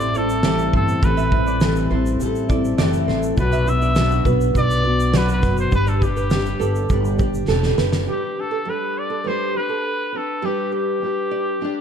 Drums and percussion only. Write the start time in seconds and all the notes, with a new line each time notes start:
0.00 shaker
0.15 shaker
0.29 shaker
0.43 snare, shaker
0.59 shaker
0.73 kick
0.88 shaker
1.03 kick, shaker
1.18 shaker
1.32 kick
1.47 shaker
1.61 snare, shaker
1.76 shaker
2.06 shaker
2.20 shaker
2.35 shaker
2.50 kick, shaker
2.65 shaker
2.78 snare, shaker
2.93 shaker
3.09 snare
3.23 shaker
3.37 kick, shaker
3.52 shaker
3.67 shaker
3.82 shaker
3.96 snare, shaker
4.11 shaker
4.25 kick, shaker
4.41 shaker
4.55 kick, shaker
4.70 shaker
5.00 shaker
5.14 snare, shaker
5.29 shaker
5.43 kick, snare, shaker
5.57 shaker
5.72 kick, shaker
5.87 shaker
6.02 kick, shaker
6.17 shaker
6.30 snare, shaker
6.46 shaker
6.61 shaker
6.75 shaker
6.90 kick, shaker
7.05 shaker
7.19 kick, shaker
7.34 shaker
7.48 snare
7.63 snare
7.78 snare
7.93 snare